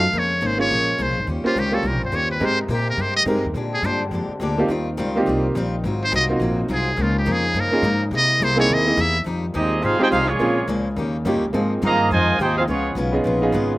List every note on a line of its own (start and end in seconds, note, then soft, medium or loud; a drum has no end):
0.00 0.12 F#2 loud
0.00 0.20 F5 loud
0.13 0.41 F2 medium
0.13 1.26 C#3 medium
0.13 1.27 G#3 medium
0.13 0.31 A#3 soft
0.13 1.27 A#3 medium
0.13 1.26 C#4 medium
0.13 0.32 C#4 soft
0.13 0.32 G#4 medium
0.13 0.33 C5 medium
0.19 0.48 C#5 medium
0.41 0.69 G#1 loud
0.41 0.60 A#3 medium
0.41 0.60 C#4 medium
0.41 0.60 G#4 medium
0.41 0.60 C5 medium
0.46 0.60 C5 medium
0.58 0.96 A#3 medium
0.58 0.96 C#4 medium
0.58 0.96 F4 medium
0.58 0.96 G#4 medium
0.58 0.97 C#5 medium
0.58 1.04 C#5 loud
0.70 0.98 A#1 medium
0.70 0.89 A#3 soft
0.70 0.89 C#4 medium
0.70 0.89 G#4 medium
0.70 0.90 C5 soft
0.98 1.09 C2 medium
0.98 1.17 A#3 medium
0.98 1.17 C#4 medium
0.98 1.18 G#4 medium
0.98 1.18 C5 medium
1.02 1.29 C5 medium
1.09 1.17 A#1 medium
1.17 1.26 G#1 medium
1.27 1.43 D#2 medium
1.27 2.41 C#3 medium
1.27 1.46 D#3 medium
1.27 2.41 G3 medium
1.27 2.40 C4 medium
1.27 1.46 C#4 soft
1.27 2.40 F4 medium
1.27 1.47 G4 medium
1.27 1.47 C5 soft
1.44 1.54 A#3 medium
1.44 1.54 C#4 medium
1.44 1.55 F4 medium
1.44 1.61 F4 medium
1.44 1.55 G4 medium
1.44 1.55 C5 medium
1.44 muted upright bass stroke soft
1.55 1.82 C#2 medium
1.55 1.74 D#3 medium
1.55 1.75 C#4 medium
1.55 1.75 G4 medium
1.55 1.76 G4 medium
1.55 1.75 C5 medium
1.72 1.83 A#3 medium
1.72 1.83 C#4 medium
1.72 1.83 F4 medium
1.72 1.83 G4 medium
1.72 1.89 A4 medium
1.72 1.83 C#5 medium
1.83 1.94 C2 medium
1.83 2.02 D#3 soft
1.83 2.03 C#4 medium
1.83 2.03 G4 soft
1.83 2.03 C5 medium
1.87 2.03 A#4 medium
1.94 2.03 A#1 medium
2.03 2.11 G1 medium
2.03 2.17 C5 medium
2.12 2.40 D#2 medium
2.12 2.31 D#3 medium
2.12 2.31 C#4 medium
2.12 2.31 G4 medium
2.12 2.32 C5 medium
2.12 2.31 C#5 loud
2.32 2.47 B4 medium
2.40 2.68 G#2 medium
2.40 3.55 C3 medium
2.40 2.59 G#3 medium
2.40 2.56 G#3 medium
2.40 4.67 G#3 medium
2.40 3.55 A#3 medium
2.40 2.56 C4 medium
2.40 2.59 C4 soft
2.40 2.57 D#4 medium
2.40 2.57 G4 medium
2.40 2.60 G4 medium
2.40 3.54 G4 medium
2.40 2.57 A#4 medium
2.40 2.60 A#4 medium
2.45 2.61 C5 loud
2.62 2.75 D#4 medium
2.68 2.97 A#2 loud
2.68 2.88 G#3 medium
2.68 2.88 C4 medium
2.68 2.88 G4 medium
2.68 2.89 A#4 medium
2.73 2.89 G4 medium
2.90 3.03 A#4 medium
2.97 3.25 G2 medium
2.97 3.16 G#3 soft
2.97 3.17 C4 medium
2.97 3.17 G4 medium
2.97 3.17 A#4 medium
3.01 3.16 C5 medium
3.16 3.23 D#5 loud
3.25 3.35 G#2 medium
3.25 3.44 G#3 medium
3.25 3.42 G#3 medium
3.25 3.42 C4 medium
3.25 3.45 C4 medium
3.25 3.42 D#4 medium
3.25 3.45 G4 medium
3.25 3.43 G4 medium
3.25 3.43 A#4 medium
3.25 3.46 A#4 medium
3.35 3.44 G2 medium
3.45 3.53 D#2 medium
3.54 3.82 A#2 medium
3.54 3.73 A#2 medium
3.54 4.68 D3 medium
3.54 3.74 G#3 medium
3.54 5.81 C4 medium
3.54 3.74 D4 medium
3.54 4.68 G4 medium
3.54 3.75 G4 medium
3.74 3.87 G#4 medium
3.82 4.10 G2 loud
3.82 4.02 A#2 medium
3.82 4.03 G#3 medium
3.82 4.03 D4 medium
3.82 4.03 G4 medium
3.82 4.02 C5 medium
4.11 4.27 F2 medium
4.11 4.31 A#2 medium
4.11 4.31 G#3 medium
4.11 4.32 D4 medium
4.11 4.32 G4 medium
4.28 muted upright bass stroke soft
4.40 4.68 D2 loud
4.40 4.59 A#2 medium
4.40 4.60 G#3 medium
4.40 4.60 D4 medium
4.40 4.60 G4 medium
4.58 4.68 A#3 medium
4.58 4.68 C4 medium
4.58 4.69 D#4 medium
4.58 4.69 F4 medium
4.58 4.69 G4 medium
4.68 4.97 D#2 medium
4.68 4.88 D#3 medium
4.68 5.83 D#3 medium
4.68 5.83 G3 medium
4.68 4.88 G3 medium
4.68 4.88 C4 medium
4.68 6.96 D#4 medium
4.68 4.89 F4 medium
4.97 5.26 C#2 loud
4.97 5.16 D#3 medium
4.97 5.16 G3 medium
4.97 5.17 C4 medium
4.97 5.17 F4 medium
5.16 5.53 A#3 medium
5.16 5.54 C4 medium
5.16 5.54 D#4 medium
5.16 5.54 F4 medium
5.16 5.54 G4 medium
5.26 5.54 C2 medium
5.26 5.45 D#3 medium
5.26 5.45 G3 medium
5.26 5.46 C4 medium
5.26 5.46 F4 medium
5.55 5.83 A#1 loud
5.55 5.74 D#3 medium
5.55 5.74 G3 medium
5.55 5.75 C4 medium
5.55 5.75 F4 medium
5.84 6.11 G#1 medium
5.84 6.02 G#2 medium
5.84 6.98 C3 medium
5.84 6.97 F#3 medium
5.84 6.03 F#3 medium
5.84 9.11 A#3 medium
5.84 6.03 C4 medium
5.84 6.04 F4 medium
6.04 6.13 C5 loud
6.12 6.39 C2 loud
6.12 6.30 G#2 medium
6.12 6.31 F#3 medium
6.12 6.31 C4 medium
6.12 6.31 F4 medium
6.12 6.25 D#5 loud
6.29 6.67 A#3 medium
6.29 6.67 C4 medium
6.29 6.67 D#4 medium
6.29 6.68 F4 medium
6.29 6.68 F#4 medium
6.39 6.68 A#1 medium
6.39 6.59 G#2 medium
6.39 6.59 F#3 medium
6.39 6.60 C4 medium
6.39 6.60 F4 medium
6.68 6.97 C2 medium
6.68 6.87 G#2 medium
6.68 6.88 F#3 medium
6.68 6.88 C4 medium
6.68 6.88 F4 medium
6.73 7.04 G#4 medium
6.96 7.25 C#2 loud
6.96 7.16 C#3 medium
6.96 8.11 C#3 medium
6.96 7.16 F3 medium
6.96 8.11 F3 medium
6.96 7.17 A#3 medium
6.96 8.11 D#4 medium
6.96 7.17 D#4 medium
7.02 7.17 F4 medium
7.19 7.34 G4 medium
7.25 7.54 F2 loud
7.25 7.44 C#3 medium
7.25 7.45 F3 medium
7.25 7.45 A#3 medium
7.25 7.45 D#4 medium
7.32 7.62 G#4 medium
7.54 7.71 G2 medium
7.54 7.73 C#3 medium
7.54 7.74 F3 medium
7.54 7.74 A#3 medium
7.54 7.74 D#4 medium
7.60 8.03 A#4 medium
7.71 7.82 A#3 medium
7.71 7.82 C#4 medium
7.71 7.83 D#4 medium
7.71 7.83 F4 medium
7.71 7.83 G#4 medium
7.71 muted upright bass stroke soft
7.82 8.10 G#2 loud
7.82 8.02 C#3 medium
7.82 8.02 F3 medium
7.82 8.02 A#3 medium
7.82 8.03 D#4 medium
8.11 8.39 C3 medium
8.11 8.30 C3 medium
8.11 9.11 C3 medium
8.11 9.11 G#3 medium
8.11 8.31 A#3 medium
8.11 9.11 E4 medium
8.11 8.31 E4 medium
8.11 8.31 G#4 medium
8.16 8.45 D#5 loud
8.40 8.68 C2 loud
8.40 8.59 C3 medium
8.40 8.60 A#3 medium
8.40 8.60 E4 medium
8.40 8.60 G#4 medium
8.40 8.59 C5 loud
8.56 8.84 A#3 medium
8.56 8.84 C4 medium
8.56 8.84 D#4 medium
8.56 8.85 E4 medium
8.56 8.85 G#4 loud
8.56 8.75 C#5 loud
8.69 8.97 D#2 loud
8.69 8.87 C3 soft
8.69 8.88 A#3 medium
8.69 8.88 E4 medium
8.69 8.89 G#4 medium
8.73 9.03 D#5 medium
8.86 8.96 A#3 medium
8.86 8.96 C4 medium
8.86 8.97 D#4 medium
8.86 8.97 E4 medium
8.86 8.97 G#4 medium
8.96 9.25 E2 loud
8.96 9.15 C3 medium
8.96 9.16 A#3 medium
8.96 9.16 E4 medium
8.96 9.17 G#4 medium
9.01 9.22 E5 loud
9.24 9.54 F2 medium
9.24 9.44 F3 medium
9.24 9.44 G#3 medium
9.24 10.96 G#3 medium
9.24 9.45 D#4 medium
9.24 9.45 G4 medium
9.28 10.40 D#3 medium
9.28 10.40 G3 medium
9.28 10.38 F4 medium
9.54 9.82 D#2 loud
9.54 9.73 F3 medium
9.54 9.73 G#3 medium
9.54 9.81 G#3 medium
9.54 9.82 C4 medium
9.54 9.80 C4 medium
9.54 9.73 D#4 medium
9.54 9.82 D#4 medium
9.54 9.73 G4 medium
9.54 9.81 G4 medium
9.54 9.81 G#4 medium
9.54 9.81 D#5 medium
9.81 9.99 G#1 loud
9.81 10.01 F3 soft
9.81 10.00 G#3 medium
9.81 10.02 G#3 soft
9.81 9.99 C4 medium
9.81 10.00 D#4 medium
9.81 10.02 D#4 soft
9.81 10.00 F4 medium
9.81 10.02 G4 medium
9.81 10.00 G#4 medium
9.81 10.00 C5 medium
9.81 10.00 F5 loud
9.99 10.10 G#3 medium
9.99 10.10 C4 medium
9.99 10.05 C4 medium
9.99 10.10 D#4 medium
9.99 10.05 D#4 medium
9.99 10.06 D#4 medium
9.99 10.11 F4 medium
9.99 10.05 G4 medium
9.99 10.11 G4 medium
9.99 10.07 G#4 medium
9.99 10.06 C5 medium
9.99 10.06 G5 loud
9.99 muted upright bass stroke soft
10.10 10.39 C2 loud
10.10 10.30 F3 medium
10.10 10.26 G#3 medium
10.10 10.31 G#3 medium
10.10 10.27 C4 medium
10.10 10.27 D#4 medium
10.10 10.31 D#4 medium
10.10 10.27 F4 medium
10.10 10.27 G#4 medium
10.10 10.27 C5 medium
10.10 10.27 F5 loud
10.14 10.31 G4 medium
10.27 10.68 F3 medium
10.27 10.68 G#3 medium
10.27 10.69 A#3 medium
10.27 10.68 C#4 medium
10.27 10.69 F4 medium
10.27 10.69 G#4 medium
10.27 10.69 C#5 medium
10.39 10.67 A#1 medium
10.39 10.58 A#2 medium
10.39 11.52 C#3 medium
10.39 10.58 F3 soft
10.39 10.59 G#3 medium
10.39 11.52 A#3 medium
10.39 10.55 A#3 medium
10.39 10.55 C4 medium
10.39 10.56 C#4 medium
10.39 10.59 C#4 medium
10.39 10.96 F4 medium
10.39 10.56 F4 medium
10.39 10.56 G#4 medium
10.68 10.96 C#2 loud
10.68 10.87 A#2 medium
10.68 10.87 F3 medium
10.68 10.87 G#3 medium
10.68 10.87 C#4 medium
10.96 11.24 D#2 loud
10.96 11.15 D#3 medium
10.96 11.54 G3 medium
10.96 11.16 A#3 medium
10.96 11.16 C#4 medium
10.96 11.54 D#4 medium
10.96 11.17 G4 medium
11.25 11.35 G2 medium
11.25 11.44 D#3 medium
11.25 11.41 A#3 medium
11.25 11.44 A#3 medium
11.25 11.41 C#4 medium
11.25 11.44 C#4 medium
11.25 11.41 D#4 medium
11.25 11.42 F4 medium
11.25 11.42 G4 medium
11.25 11.45 G4 medium
11.34 11.43 D#2 medium
11.44 11.53 C#2 medium
11.53 11.72 G#2 medium
11.53 11.82 G#2 medium
11.53 12.67 D#3 medium
11.53 11.72 F3 medium
11.53 13.78 G#3 medium
11.53 11.96 A#3 medium
11.53 12.66 C4 medium
11.53 11.96 C4 medium
11.53 11.73 C4 medium
11.53 11.96 D#4 medium
11.53 11.73 D#4 medium
11.53 13.78 F4 medium
11.53 11.97 F4 medium
11.53 11.97 G#4 medium
11.82 12.10 G2 loud
11.82 12.01 G#2 medium
11.82 12.01 F3 medium
11.82 12.11 F3 medium
11.82 12.11 A#3 loud
11.82 12.01 C4 medium
11.82 12.01 D#4 medium
11.86 12.11 D#3 loud
11.86 12.11 G#4 loud
11.86 12.11 D#5 loud
11.86 12.11 F5 loud
11.86 12.11 A#5 loud
12.10 12.38 F2 loud
12.10 12.29 G#2 soft
12.10 12.39 D#3 medium
12.10 12.30 F3 medium
12.10 12.39 F3 medium
12.10 12.39 G#3 medium
12.10 12.30 C4 medium
12.10 12.30 D#4 medium
12.10 12.39 F4 medium
12.10 12.39 C5 loud
12.10 12.39 D#5 medium
12.10 12.39 G#5 loud
12.39 12.67 D#2 loud
12.39 12.58 G#2 medium
12.39 12.58 F3 medium
12.39 12.59 C4 medium
12.39 12.56 D#4 medium
12.39 12.59 D#4 medium
12.39 12.56 G4 medium
12.39 12.56 G#4 medium
12.39 12.57 C5 medium
12.39 12.57 G5 loud
12.58 12.63 F3 medium
12.58 12.63 C4 medium
12.58 12.64 D#4 medium
12.58 12.63 F4 medium
12.58 12.63 G#4 medium
12.58 12.63 C5 medium
12.58 12.63 F5 medium
12.67 12.94 C#2 medium
12.67 12.86 C#3 medium
12.67 13.78 C#3 medium
12.67 12.95 F3 medium
12.67 12.87 G#3 medium
12.67 12.95 G#3 medium
12.67 13.78 B3 medium
12.67 12.87 B3 medium
12.67 12.95 B3 medium
12.67 12.95 C#4 medium
12.67 12.95 F4 medium
12.67 12.88 F4 medium
12.67 12.96 G#4 medium
12.67 12.95 C#5 medium
12.95 13.23 B1 loud
12.95 13.15 C#3 medium
12.95 13.15 G#3 medium
12.95 13.16 B3 medium
12.95 13.16 F4 medium
13.12 13.40 B3 medium
13.12 13.40 C#4 medium
13.12 13.40 D#4 medium
13.12 13.41 F4 medium
13.12 13.41 G#4 medium
13.24 13.52 A#1 loud
13.24 13.43 C#3 medium
13.24 13.44 G#3 medium
13.24 13.44 B3 medium
13.24 13.44 F4 medium
13.42 13.78 B3 medium
13.42 13.78 C#4 medium
13.42 13.78 D#4 medium
13.42 13.78 F4 medium
13.42 13.78 G#4 medium
13.52 13.78 G#1 medium
13.52 13.71 C#3 medium
13.52 13.72 G#3 medium
13.52 13.72 B3 medium
13.52 13.72 F4 medium